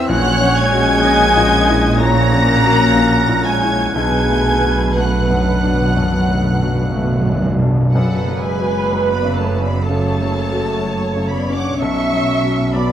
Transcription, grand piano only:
0.00 0.13 E2 medium
0.00 0.13 C4 medium
0.00 0.13 E4 medium
0.09 1.96 A#1 medium
0.42 0.93 C#4 medium
0.73 1.24 F#4 medium
1.04 1.56 C#4 medium
1.37 1.88 A#2 medium
1.69 2.20 E4 medium
2.01 3.92 A#1 medium
2.33 2.84 C#4 medium
2.65 3.16 F#4 medium
2.96 3.49 C#4 medium
3.29 3.82 A#2 medium
3.62 3.96 E4 soft
3.95 5.91 B1 medium
4.29 4.83 A3 medium
4.64 5.17 F#4 soft
4.97 5.50 A3 medium
5.30 5.83 F#2 soft
5.64 6.16 D4 medium
5.97 6.49 F#2 medium
6.29 6.81 A3 soft
6.62 7.14 F#4 medium
6.96 7.48 A3 medium
7.29 7.81 F#2 soft
7.62 7.94 D4 medium
7.95 9.83 F#2 medium
8.28 8.78 F#3 medium
8.60 9.10 F#4 soft
8.93 9.43 F#3 medium
9.25 9.75 C#3 soft
9.57 10.07 C#4 soft
9.89 10.39 C#3 medium
10.22 10.71 F#3 medium
10.53 11.03 F#4 medium
10.85 11.35 F#3 soft
11.16 11.66 C#3 soft
11.49 11.80 C#4 soft
11.82 12.92 B1 medium
12.13 12.62 F#3 soft
12.45 12.92 F#4 medium
12.76 12.92 F#3 medium

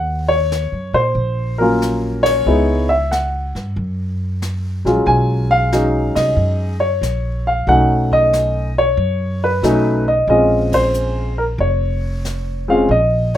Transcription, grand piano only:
0.00 0.31 F#5 medium
0.28 0.96 C#5 loud
0.94 1.56 C5 medium
1.58 2.42 F#3 medium
1.58 2.43 A#3 medium
1.58 2.43 C#4 medium
1.58 2.43 F4 medium
1.58 2.20 A#4 medium
2.23 2.91 C#5 loud
2.46 2.86 G#3 medium
2.46 2.86 B3 soft
2.46 2.87 D#4 soft
2.46 2.87 E4 medium
2.89 3.12 E5 medium
3.11 3.73 F#5 medium
4.85 5.68 F#3 medium
4.85 5.68 G#3 soft
4.85 5.68 C#4 soft
4.85 5.68 F4 medium
5.07 5.52 G#5 medium
5.51 6.18 F5 medium
5.72 6.72 F#3 medium
5.72 6.72 G#3 soft
5.72 6.73 C#4 soft
5.72 6.73 D#4 medium
6.15 6.83 D#5 medium
6.80 7.48 C#5 medium
7.47 7.69 F5 medium
7.67 8.68 F#3 soft
7.67 8.68 A3 soft
7.67 8.68 C#4 soft
7.67 8.69 D#4 medium
7.67 8.13 F#5 medium
8.13 8.73 D#5 loud
8.78 9.45 C#5 medium
9.44 10.04 B4 medium
9.63 10.02 F#3 medium
9.63 10.03 A3 medium
9.63 10.03 C#4 soft
9.63 10.03 D#4 medium
10.08 10.28 D#5 medium
10.29 11.29 G#3 medium
10.29 11.29 C4 soft
10.29 11.29 C#4 medium
10.29 11.30 F4 medium
10.29 10.74 D#5 medium
10.74 11.35 C5 medium
11.38 11.43 A#4 medium
11.60 12.65 C#5 medium
12.68 12.87 G#3 medium
12.68 12.88 C4 medium
12.68 12.88 C#4 medium
12.68 12.88 F4 medium
12.68 12.89 F5 medium
12.91 13.36 D#5 medium

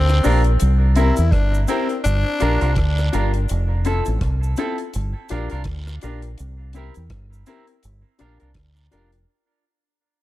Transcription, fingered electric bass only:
0.00 0.20 D2 medium
0.26 0.57 A#1 loud
0.62 1.11 C2 loud
1.19 1.31 E2 medium
1.33 1.64 G1 medium
2.05 2.23 G1 loud
2.42 2.60 A#1 medium
2.62 2.75 C2 medium
2.77 3.09 D2 medium
3.14 3.46 G1 loud
3.51 4.00 F1 loud
4.08 4.21 A1 medium
4.22 4.53 C2 loud
4.96 5.13 G1 loud
5.31 5.49 A#1 medium
5.52 5.66 C2 medium
5.66 5.98 D2 medium
6.04 6.35 A#1 medium
6.40 6.89 C2 loud
6.97 7.10 E2 medium
7.11 7.42 G1 medium
7.85 8.02 G1 loud
8.21 8.38 A#1 medium
8.42 8.55 C2 medium
8.56 8.88 D2 medium
8.93 9.24 F1 medium

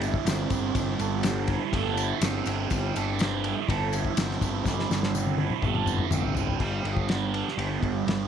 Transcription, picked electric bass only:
0.00 0.16 G1 loud
0.25 0.45 G1 loud
0.50 0.69 G1 medium
0.75 0.94 G1 medium
0.99 1.57 G1 medium
1.72 2.11 G1 medium
2.21 2.40 G1 medium
2.46 2.65 G1 medium
2.71 2.90 G1 loud
2.96 3.53 G1 medium
3.68 4.06 G1 loud
4.17 4.36 G1 medium
4.41 4.60 G1 medium
4.65 4.84 G1 medium
4.90 5.47 G1 medium
5.63 6.01 G1 loud
6.11 6.30 G1 loud
6.35 6.55 G1 medium
6.59 6.79 G1 medium
6.84 7.42 G1 medium
7.57 7.77 G1 medium
7.82 8.01 G1 medium
8.07 8.28 G1 medium

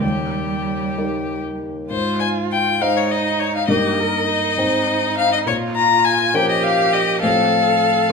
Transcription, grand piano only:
0.01 1.86 D#2 soft
0.01 1.86 D#3 soft
0.98 1.87 G3 soft
0.98 1.87 D#4 soft
0.98 1.87 A#4 soft
1.90 2.78 G#2 soft
2.81 3.66 G#3 soft
2.81 3.66 D#4 soft
2.81 3.66 C5 soft
3.68 4.55 G2 soft
3.68 4.54 A#3 soft
3.68 4.54 D#4 soft
3.68 4.55 A#4 soft
4.58 5.44 G#2 medium
4.58 5.43 G#3 soft
4.58 5.43 C4 soft
4.58 5.43 C5 soft
5.46 6.32 A#2 soft
6.34 7.18 F3 soft
6.34 7.18 C#4 soft
6.34 7.19 A#4 medium
7.23 8.08 A2 medium
7.23 8.06 F3 soft
7.23 8.07 C4 soft
7.23 8.07 C5 soft

